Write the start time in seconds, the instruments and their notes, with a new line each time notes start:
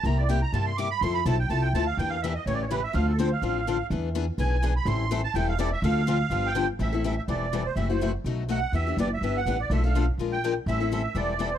0.03 upright bass C2, steel-string acoustic guitar C3 G3 A#3 E4 G4, accordion A#5
0.18 accordion D5
0.29 steel-string acoustic guitar C3 G3 A#3 E4 G4, accordion G5
0.42 accordion A#5
0.53 upright bass G2, steel-string acoustic guitar C3 G3 A#3 E4 G4, accordion A5
0.66 accordion C6
0.77 steel-string acoustic guitar C3 G3 A#3 E4 G4, accordion D6
0.91 accordion B5
1.01 upright bass F2, steel-string acoustic guitar F3 C4 E4 A4, accordion C6
1.14 accordion B5
1.25 upright bass B1, steel-string acoustic guitar F3 C4 E4 A4, accordion A5
1.39 accordion G5
1.50 upright bass C2, steel-string acoustic guitar F3 C4 E4 A4, accordion A5
1.62 accordion G5
1.73 upright bass D2, steel-string acoustic guitar F3 C4 E4 A4, accordion A5
1.86 accordion F5
1.97 upright bass E2, steel-string acoustic guitar E3 A#3 D4 G4, accordion G5
2.10 accordion F5
2.22 steel-string acoustic guitar E3 A#3 D4 G4, accordion E5
2.34 accordion D#5
2.46 upright bass A1, steel-string acoustic guitar C#3 E3 A3 C#4 G4, accordion C#5
2.54 accordion D5
2.62 accordion C#5
2.71 steel-string acoustic guitar C#3 E3 A3 C#4 G4, accordion B4
2.83 accordion E5
2.93 upright bass D2, steel-string acoustic guitar D3 F3 C4 D4 A4, accordion F5
3.09 accordion A4
3.19 steel-string acoustic guitar D3 F3 C4 D4 A4, accordion C5
3.32 accordion F5
3.42 upright bass A1, steel-string acoustic guitar D3 F3 C4 D4 A4
3.67 steel-string acoustic guitar D3 F3 C4 D4 A4
3.90 upright bass E2, steel-string acoustic guitar E3 B3 D4 G#4
4.15 steel-string acoustic guitar E3 B3 D4 G#4
4.38 upright bass B1, steel-string acoustic guitar E3 B3 D4 G#4, accordion G#5
4.62 steel-string acoustic guitar E3 B3 D4 G#4
4.76 accordion B5
4.85 upright bass A1, steel-string acoustic guitar E3 G3 C4 E4 A4, accordion C6
5.11 steel-string acoustic guitar E3 G3 C4 E4 A4
5.24 accordion A5
5.34 upright bass E1, steel-string acoustic guitar E3 G3 C4 E4 A4, accordion G5
5.49 accordion F5
5.59 steel-string acoustic guitar E3 G3 C4 E4 A4, accordion D5
5.72 accordion E5
5.82 upright bass D2, steel-string acoustic guitar D3 F3 C4 D4 A4, accordion F5
6.07 steel-string acoustic guitar D3 F3 C4 D4 A4
6.30 upright bass G1, steel-string acoustic guitar D3 F3 B3 D4 G4
6.47 accordion G5
6.55 steel-string acoustic guitar D3 F3 B3 D4 G4
6.79 upright bass A1, steel-string acoustic guitar E3 G3 C4 E4 A4, accordion E5
6.93 steel-string acoustic guitar C4 E4 A4
7.04 steel-string acoustic guitar E3 G3 C4 E4 A4, accordion E5
7.17 accordion E5
7.28 upright bass E1, steel-string acoustic guitar E3 G3 C4 E4 A4, accordion D5
7.53 steel-string acoustic guitar E3 G3 C4 E4 A4
7.66 accordion C5
7.76 upright bass F#1, steel-string acoustic guitar C3 E3 A3 E4 F#4, accordion E5
7.90 steel-string acoustic guitar A3 E4 F#4, accordion C5
8.01 steel-string acoustic guitar C3 E3 A3 E4 F#4
8.24 upright bass B1, steel-string acoustic guitar B2 F#3 A3 D#4 F#4
8.49 steel-string acoustic guitar B2 F#3 A3 D#4 F#4, accordion F#5
8.72 upright bass E2, steel-string acoustic guitar E3 B3 D4 G4, accordion E5
8.87 steel-string acoustic guitar B3 D4 G4
8.97 upright bass F#1, steel-string acoustic guitar E3 B3 D4 G4, accordion D5
9.13 accordion E5
9.21 upright bass G1, steel-string acoustic guitar E3 B3 D4 G4
9.37 accordion F#5
9.46 upright bass A1, steel-string acoustic guitar E3 B3 D4 G4
9.60 accordion D5
9.70 upright bass B1, steel-string acoustic guitar B2 F3 A3 D4 A4, accordion E5
9.84 steel-string acoustic guitar A3 D4 A4, accordion F5
9.95 steel-string acoustic guitar B2 F3 A3 D4 A4
10.18 upright bass A#1, steel-string acoustic guitar F3 G#3 D4 F4 A#4
10.32 accordion G5
10.44 steel-string acoustic guitar F3 G#3 D4 F4 A#4
10.66 upright bass A1, steel-string acoustic guitar E3 G3 C4 E4 A4, accordion E5
10.80 steel-string acoustic guitar C4 E4 A4
10.92 steel-string acoustic guitar E3 G3 C4 E4 A4, accordion E5
11.15 upright bass E1, steel-string acoustic guitar E3 G3 C4 E4 A4, accordion D5
11.39 steel-string acoustic guitar E3 G3 C4 E4 A4
11.54 accordion C5